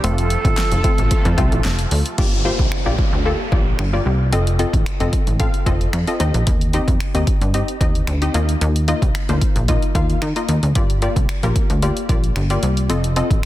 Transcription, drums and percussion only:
0.04 closed hi-hat
0.18 closed hi-hat
0.30 closed hi-hat
0.45 kick, closed hi-hat
0.57 snare, clap, closed hi-hat
0.72 closed hi-hat
0.84 kick, closed hi-hat
0.98 closed hi-hat
1.11 kick, closed hi-hat
1.25 closed hi-hat
1.38 kick, closed hi-hat
1.52 closed hi-hat
1.64 snare, clap, closed hi-hat
1.79 closed hi-hat
1.91 open hi-hat
2.06 closed hi-hat
2.18 kick, crash
2.59 kick
2.72 finger snap
2.99 kick
3.52 kick
3.79 finger snap
4.33 closed hi-hat
4.47 closed hi-hat
4.59 closed hi-hat
4.73 kick, closed hi-hat
4.86 finger snap, closed hi-hat
5.00 closed hi-hat
5.13 kick, closed hi-hat
5.27 closed hi-hat
5.40 kick, closed hi-hat
5.54 closed hi-hat
5.66 kick, closed hi-hat
5.81 closed hi-hat
5.93 finger snap, closed hi-hat
6.07 closed hi-hat
6.20 closed hi-hat
6.34 closed hi-hat
6.47 kick, closed hi-hat
6.61 closed hi-hat
6.73 closed hi-hat
6.88 kick, closed hi-hat
7.00 finger snap, closed hi-hat
7.15 closed hi-hat
7.27 kick, closed hi-hat
7.42 closed hi-hat
7.54 closed hi-hat
7.68 closed hi-hat
7.81 kick, closed hi-hat
7.95 closed hi-hat
8.07 finger snap, closed hi-hat
8.22 closed hi-hat
8.34 closed hi-hat
8.49 closed hi-hat
8.61 closed hi-hat
8.76 closed hi-hat
8.88 closed hi-hat
9.02 kick, closed hi-hat
9.15 finger snap, closed hi-hat
9.29 closed hi-hat
9.41 kick, closed hi-hat
9.56 closed hi-hat
9.68 kick, closed hi-hat
9.82 closed hi-hat
9.95 kick, closed hi-hat
10.10 closed hi-hat
10.22 finger snap, closed hi-hat
10.36 closed hi-hat
10.49 closed hi-hat
10.63 closed hi-hat
10.75 kick, closed hi-hat
10.90 closed hi-hat
11.02 closed hi-hat
11.16 kick, closed hi-hat
11.29 finger snap, closed hi-hat
11.43 closed hi-hat
11.56 kick, closed hi-hat
11.70 closed hi-hat
11.82 closed hi-hat
11.97 closed hi-hat
12.09 kick, closed hi-hat
12.24 closed hi-hat
12.36 finger snap, closed hi-hat
12.50 closed hi-hat
12.63 closed hi-hat
12.77 closed hi-hat
12.90 closed hi-hat
13.04 closed hi-hat
13.16 closed hi-hat
13.31 kick, closed hi-hat

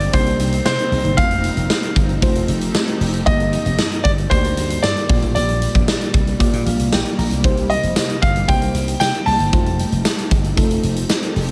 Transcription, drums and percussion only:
0.00 closed hi-hat
0.13 kick, closed hi-hat
0.26 closed hi-hat
0.39 closed hi-hat
0.52 closed hi-hat
0.66 snare, tambourine
0.79 closed hi-hat
0.92 open hi-hat
1.05 closed hi-hat
1.18 kick, closed hi-hat
1.31 closed hi-hat
1.44 closed hi-hat
1.57 closed hi-hat
1.70 snare, tambourine
1.83 closed hi-hat
1.96 kick, closed hi-hat
2.09 closed hi-hat
2.22 kick, closed hi-hat
2.35 closed hi-hat
2.48 closed hi-hat
2.61 closed hi-hat
2.75 snare, tambourine
2.88 closed hi-hat
3.01 open hi-hat
3.14 closed hi-hat
3.27 kick, closed hi-hat
3.40 closed hi-hat
3.53 closed hi-hat
3.66 closed hi-hat
3.79 snare, tambourine
3.92 closed hi-hat
4.05 kick, closed hi-hat
4.18 closed hi-hat
4.31 kick, closed hi-hat
4.44 closed hi-hat
4.57 closed hi-hat
4.70 closed hi-hat
4.84 snare, tambourine
4.97 closed hi-hat
5.09 kick, open hi-hat
5.22 closed hi-hat
5.35 closed hi-hat
5.49 closed hi-hat
5.62 closed hi-hat
5.75 kick, closed hi-hat
5.88 snare, tambourine
6.01 closed hi-hat
6.14 kick, closed hi-hat
6.27 closed hi-hat
6.40 kick, closed hi-hat
6.53 closed hi-hat
6.66 closed hi-hat
6.80 closed hi-hat
6.93 snare, tambourine
7.05 closed hi-hat
7.19 open hi-hat
7.31 closed hi-hat
7.44 kick, closed hi-hat
7.57 closed hi-hat
7.70 closed hi-hat
7.83 closed hi-hat
7.96 snare, tambourine
8.10 closed hi-hat
8.23 kick, closed hi-hat
8.36 closed hi-hat
8.48 kick, closed hi-hat
8.62 closed hi-hat
8.75 closed hi-hat
8.88 closed hi-hat
9.01 snare, tambourine
9.14 closed hi-hat
9.28 open hi-hat
9.40 closed hi-hat
9.53 kick, closed hi-hat
9.66 closed hi-hat
9.79 closed hi-hat
9.92 closed hi-hat
10.05 snare, tambourine
10.18 closed hi-hat
10.31 kick, closed hi-hat
10.44 closed hi-hat
10.57 kick, closed hi-hat
10.71 closed hi-hat
10.83 closed hi-hat
10.96 closed hi-hat
11.09 snare, tambourine
11.23 closed hi-hat
11.36 open hi-hat
11.48 closed hi-hat

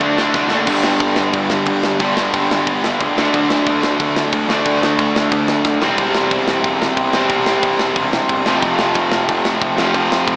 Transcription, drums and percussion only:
0.00 kick, ride
0.18 snare
0.34 kick, snare
0.50 snare
0.67 kick, crash
0.83 snare
1.00 kick, crash
1.16 snare
1.33 kick, crash
1.50 snare
1.65 kick, crash
1.83 snare
1.99 kick, crash
2.17 snare
2.34 kick, crash
2.51 snare
2.67 kick, crash
2.84 snare
3.01 kick, crash
3.18 snare
3.34 kick, crash
3.50 snare
3.66 kick, crash
3.83 snare
4.00 kick, crash
4.16 snare
4.32 kick, crash
4.50 snare
4.66 kick, crash
4.83 snare
4.99 kick, crash
5.16 snare
5.32 kick, crash
5.48 snare
5.65 kick, snare
5.82 snare
5.98 kick, crash
6.15 snare
6.31 kick, crash
6.48 snare
6.64 kick, crash
6.82 snare
6.97 kick, crash
7.13 snare
7.29 kick, crash
7.46 snare
7.63 kick, crash
7.79 snare
7.96 kick, crash
8.13 snare
8.29 kick, crash
8.46 snare
8.62 kick, crash
8.79 snare
8.94 kick, crash
9.12 snare
9.29 kick, crash
9.45 snare
9.61 kick, crash
9.78 snare
9.94 kick, crash
10.12 snare
10.28 kick, crash

